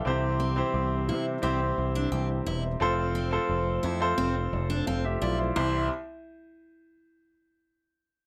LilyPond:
<<
  \new Staff \with { instrumentName = "Grand piano" } { \time 4/4 \key c \major \tempo 4 = 87 << { <a' f''>16 r2. r8. | r2. <a' f''>16 <g' e''>16 <f' d''>16 <e' c''>16~ | <e' c''>16 r2. r8. | } \\ { <c' e' g' c''>8. <c' e' g' c''>4 r16 <c' e' g' c''>4.~ <c' e' g' c''>16 r16 | <c' f' a' c''>8. <c' f' a' c''>4 <c' f' a' c''>4.~ <c' f' a' c''>16 r8 | <c' e' g' c''>8 r2. r8 | } >> }
  \new Staff \with { instrumentName = "Grand piano" } { \clef bass \time 4/4 \key c \major c4. r2 r8 | r1 | c,8 r2. r8 | }
  \new Staff \with { instrumentName = "Steel-string acoustic guitar" } { \time 4/4 \key c \major r8 c'16 r8. e'16 r16 c'16 r8 d'16 c'16 r16 e'16 r16 | r8 c'16 r8. e'16 r16 c'16 r8 d'16 c'16 r16 e'16 r16 | e'8 r2. r8 | }
  \new Staff \with { instrumentName = "Tonewheel organ" } { \clef bass \time 4/4 \key c \major << { c'1~ | c'1 | <e g c'>8 r2. r8 | } \\ { <e g>1 | <f a>1 | r1 | } >> }
  \new Staff \with { instrumentName = "Picked electric bass" } { \clef bass \time 4/4 \key c \major c,4 c,8 c8 c,8 c,8 c,8 e,,8 | f,,4 f,,8 f,8 f,,8 f,,8 f,,8 b,,8 | c,8 r2. r8 | }
>>